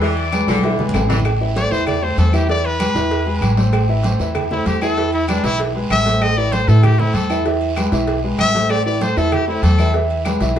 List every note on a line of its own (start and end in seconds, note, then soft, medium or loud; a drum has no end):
0.00 0.42 E2 loud
0.00 0.26 E3 medium
0.00 0.27 E3 medium
0.00 0.27 E4 loud
0.00 0.91 D5 loud
0.00 0.28 E5 medium
0.00 0.91 D6 medium
0.00 cowbell loud
0.00 high conga soft
0.00 long guiro medium
0.17 high conga soft
0.17 low agogo medium
0.32 0.58 G#3 medium
0.32 0.58 G#4 medium
0.32 0.58 B4 medium
0.32 cowbell medium
0.32 high conga loud
0.32 low agogo loud
0.32 short guiro medium
0.32 claves medium
0.47 0.91 B1 loud
0.47 0.83 D3 medium
0.47 cowbell medium
0.47 high bongo loud
0.47 high conga medium
0.47 short guiro medium
0.58 high conga loud
0.63 0.77 E3 medium
0.63 0.77 E4 medium
0.63 0.77 E5 loud
0.63 cowbell loud
0.63 high bongo medium
0.63 low agogo medium
0.63 long guiro medium
0.79 1.04 G#3 medium
0.79 1.05 G#4 medium
0.79 1.05 B4 medium
0.79 low conga medium
0.89 low conga medium
0.93 1.66 A1 loud
0.93 cowbell medium
0.93 low bongo loud
0.93 low timbale medium
0.93 low agogo loud
0.93 short guiro medium
0.93 claves medium
1.09 1.17 E3 medium
1.09 1.23 E3 loud
1.09 1.23 E4 loud
1.09 1.23 E5 loud
1.09 cowbell medium
1.09 low bongo loud
1.09 low conga medium
1.09 short guiro medium
1.20 low conga medium
1.25 cowbell loud
1.25 high conga soft
1.25 low agogo loud
1.25 long guiro medium
1.25 claves medium
1.41 1.54 E3 medium
1.41 1.54 E4 medium
1.41 1.54 E5 medium
1.41 high conga soft
1.56 1.69 A3 medium
1.56 1.69 A4 medium
1.56 1.69 C5 medium
1.56 1.73 D5 loud
1.56 cowbell medium
1.56 high conga loud
1.56 low agogo medium
1.56 short guiro medium
1.71 2.15 E2 loud
1.71 1.97 E3 medium
1.71 1.97 E4 medium
1.71 1.86 C5 loud
1.71 1.97 E5 loud
1.71 high conga soft
1.71 short guiro medium
1.86 2.05 D5 medium
1.86 cowbell loud
1.86 high conga soft
1.86 low conga medium
1.86 low agogo loud
1.86 long guiro medium
1.86 claves medium
2.02 2.28 A3 medium
2.02 2.28 A4 medium
2.02 2.28 C5 medium
2.02 2.18 C5 medium
2.02 high conga soft
2.17 2.90 E2 loud
2.17 2.33 A4 medium
2.17 cowbell medium
2.17 high conga medium
2.17 low timbale medium
2.17 low agogo medium
2.17 short guiro medium
2.33 2.46 E3 loud
2.33 2.46 E4 loud
2.33 2.49 G4 medium
2.33 2.46 E5 loud
2.33 high conga medium
2.33 low agogo loud
2.33 short guiro medium
2.33 claves medium
2.49 2.74 E3 medium
2.49 2.75 E4 medium
2.49 2.67 D5 loud
2.49 2.75 E5 medium
2.49 cowbell loud
2.49 high conga soft
2.49 long guiro medium
2.65 3.55 B4 loud
2.65 high conga soft
2.65 low agogo medium
2.80 2.93 G#3 medium
2.80 2.93 G#4 medium
2.80 2.93 B4 medium
2.80 cowbell medium
2.80 high conga loud
2.80 low agogo loud
2.80 short guiro medium
2.80 claves medium
2.95 3.39 E2 loud
2.95 3.21 E3 medium
2.95 3.21 E4 loud
2.95 3.21 E5 loud
2.95 cowbell medium
2.95 high conga soft
2.95 short guiro medium
3.11 cowbell loud
3.11 high conga soft
3.11 low agogo medium
3.11 long guiro medium
3.26 3.52 G#3 medium
3.26 3.52 G#4 medium
3.26 3.52 B4 medium
3.26 high conga soft
3.41 4.14 A1 loud
3.41 cowbell medium
3.41 high conga medium
3.41 low agogo loud
3.41 short guiro medium
3.41 claves medium
3.57 3.83 A3 medium
3.57 3.83 A4 medium
3.57 3.84 C5 medium
3.57 cowbell medium
3.57 high conga medium
3.57 short guiro medium
3.73 cowbell loud
3.73 high conga soft
3.73 low agogo loud
3.73 long guiro medium
3.73 claves medium
3.89 4.02 E3 medium
3.89 4.02 E4 medium
3.89 4.02 E5 medium
3.89 high conga soft
4.03 4.17 A3 medium
4.03 4.17 A4 medium
4.03 4.18 C5 medium
4.03 cowbell medium
4.03 high conga loud
4.03 low agogo medium
4.03 short guiro medium
4.19 4.63 E2 loud
4.19 4.45 E3 loud
4.19 4.46 E4 medium
4.19 4.46 E5 loud
4.19 high conga soft
4.19 short guiro medium
4.35 cowbell loud
4.35 high conga soft
4.35 low conga medium
4.35 low agogo loud
4.35 long guiro medium
4.35 claves medium
4.51 4.76 A3 medium
4.51 4.68 E4 loud
4.51 4.77 A4 medium
4.51 4.77 C5 medium
4.51 high conga soft
4.51 low conga medium
4.66 5.38 E2 loud
4.66 4.81 G4 loud
4.66 cowbell medium
4.66 high conga medium
4.66 low timbale medium
4.66 low agogo medium
4.66 short guiro medium
4.81 4.95 E3 medium
4.81 4.95 E4 loud
4.81 5.12 A4 loud
4.81 4.95 E5 medium
4.81 low agogo loud
4.81 short guiro medium
4.81 claves medium
4.97 5.23 E3 medium
4.97 5.23 E4 medium
4.97 5.23 E5 medium
4.97 cowbell loud
4.97 high conga soft
4.97 long guiro medium
5.12 5.28 E4 medium
5.12 high conga soft
5.12 low agogo medium
5.28 5.41 G#3 medium
5.28 5.46 D4 loud
5.28 5.42 G#4 medium
5.28 5.42 B4 medium
5.28 cowbell medium
5.28 high conga loud
5.28 low agogo loud
5.28 short guiro medium
5.28 claves medium
5.44 5.87 B1 loud
5.44 5.70 E3 loud
5.44 5.59 E4 loud
5.44 5.70 E4 medium
5.44 5.70 E5 loud
5.44 cowbell medium
5.44 high conga soft
5.44 short guiro medium
5.59 cowbell loud
5.59 high conga soft
5.59 low agogo medium
5.59 long guiro medium
5.75 6.00 G#3 medium
5.75 6.01 G#4 medium
5.75 6.01 B4 medium
5.75 high conga soft
5.90 6.62 A1 medium
5.90 6.24 E5 loud
5.90 cowbell medium
5.90 high conga medium
5.90 low timbale medium
5.90 low agogo loud
5.90 short guiro medium
5.90 claves medium
6.06 6.32 A3 medium
6.06 6.32 A4 medium
6.06 6.32 C5 medium
6.06 cowbell medium
6.06 high conga medium
6.06 short guiro medium
6.21 6.39 D#5 loud
6.21 cowbell loud
6.21 high conga soft
6.21 low agogo loud
6.21 long guiro medium
6.21 claves medium
6.37 6.50 E3 medium
6.37 6.50 E4 medium
6.37 6.54 D5 loud
6.37 6.50 E5 medium
6.37 high conga soft
6.52 6.66 A3 medium
6.52 6.66 A4 medium
6.52 6.70 C5 medium
6.52 6.66 C5 medium
6.52 cowbell medium
6.52 high conga loud
6.52 low agogo medium
6.52 short guiro medium
6.68 7.11 A2 loud
6.68 6.94 E3 loud
6.68 6.94 E4 loud
6.68 6.85 A4 medium
6.68 6.94 E5 medium
6.68 short guiro medium
6.83 7.01 G4 medium
6.83 cowbell loud
6.83 high conga soft
6.83 low conga medium
6.83 low agogo loud
6.83 long guiro medium
6.83 claves medium
6.99 7.25 A3 medium
6.99 7.16 E4 medium
6.99 7.25 A4 medium
6.99 7.25 C5 medium
6.99 high conga soft
6.99 low conga medium
7.14 7.87 E2 loud
7.14 7.45 A4 loud
7.14 cowbell medium
7.14 high conga medium
7.14 low agogo medium
7.14 short guiro medium
7.30 7.43 E3 loud
7.30 7.43 E4 loud
7.30 7.43 E5 medium
7.30 low agogo loud
7.30 short guiro medium
7.30 claves medium
7.46 7.71 E3 medium
7.46 7.72 E4 medium
7.46 7.72 E5 medium
7.46 cowbell loud
7.46 high conga soft
7.46 long guiro medium
7.61 high conga soft
7.61 low agogo medium
7.76 7.90 G#3 medium
7.76 7.90 G#4 medium
7.76 7.90 B4 medium
7.76 cowbell medium
7.76 high conga medium
7.76 low agogo loud
7.76 short guiro medium
7.76 claves medium
7.92 8.36 B1 loud
7.92 8.18 E3 loud
7.92 8.18 E4 loud
7.92 8.18 E5 medium
7.92 cowbell medium
7.92 high conga soft
7.92 short guiro medium
8.07 cowbell loud
8.07 high conga soft
8.07 low agogo medium
8.07 long guiro medium
8.24 8.49 G#3 medium
8.24 8.49 G#4 medium
8.24 8.49 B4 medium
8.24 high conga soft
8.39 9.11 A1 medium
8.39 8.72 E5 loud
8.39 cowbell medium
8.39 high conga loud
8.39 low timbale medium
8.39 low agogo loud
8.39 short guiro medium
8.39 claves medium
8.55 8.80 A3 medium
8.55 8.80 A4 medium
8.55 8.81 C5 medium
8.55 cowbell medium
8.55 high conga medium
8.55 short guiro medium
8.70 8.85 D5 loud
8.70 cowbell loud
8.70 high conga soft
8.70 low agogo loud
8.70 long guiro medium
8.70 claves medium
8.86 8.99 E3 medium
8.86 8.99 E4 medium
8.86 9.04 D5 loud
8.86 8.99 E5 medium
8.86 high conga soft
9.01 9.14 A3 medium
9.01 9.14 A4 medium
9.01 9.14 C5 medium
9.01 9.19 C5 medium
9.01 cowbell medium
9.01 high conga loud
9.01 low agogo medium
9.01 short guiro medium
9.17 9.60 E2 loud
9.17 9.42 E3 loud
9.17 9.43 E4 loud
9.17 9.35 A4 loud
9.17 9.43 E5 loud
9.17 short guiro medium
9.32 9.47 G4 loud
9.32 cowbell loud
9.32 high conga soft
9.32 low conga medium
9.32 low agogo loud
9.32 long guiro medium
9.32 claves medium
9.48 9.73 A3 medium
9.48 9.64 E4 loud
9.48 9.73 A4 medium
9.48 9.74 C5 medium
9.48 high conga soft
9.63 10.35 E2 loud
9.63 9.93 A4 loud
9.63 cowbell medium
9.63 high conga medium
9.63 low timbale medium
9.63 low agogo medium
9.63 short guiro medium
9.79 9.92 E3 loud
9.79 9.92 E4 loud
9.79 9.92 E5 loud
9.79 high conga medium
9.79 low agogo loud
9.79 short guiro medium
9.79 claves medium
9.94 10.20 E3 medium
9.94 10.20 E4 medium
9.94 10.20 E5 medium
9.94 cowbell loud
9.94 high conga soft
9.94 long guiro medium
10.10 high conga soft
10.10 low agogo medium
10.25 10.38 G#3 medium
10.25 10.38 G#4 medium
10.25 10.39 B4 medium
10.25 cowbell medium
10.25 high conga loud
10.25 low agogo loud
10.25 short guiro medium
10.25 claves medium
10.40 10.59 B1 medium
10.40 10.59 E3 loud
10.40 10.59 E4 medium
10.40 10.59 E5 loud
10.40 cowbell medium
10.40 high conga soft
10.40 short guiro medium